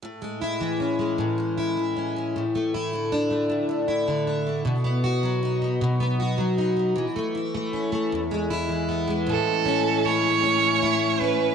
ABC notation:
X:1
M:6/8
L:1/16
Q:3/8=52
K:A
V:1 name="Violin"
z12 | z12 | z12 | z12 |
A4 c6 B2 |]
V:2 name="Steel-string acoustic guitar"
A,, G, E E, C G, A,, G, E E, C G, | A,, A, E D, D A, A,, A, E D, D A, | B,, B, F F, ^D B, B,, B, F F, D B, | E, A, E A, C A, E,, G, E E, B, G, |
A,,2 C2 E2 C2 E2 C2 |]
V:3 name="String section"
z12 | z12 | z12 | z12 |
[A,,A,C]12 |]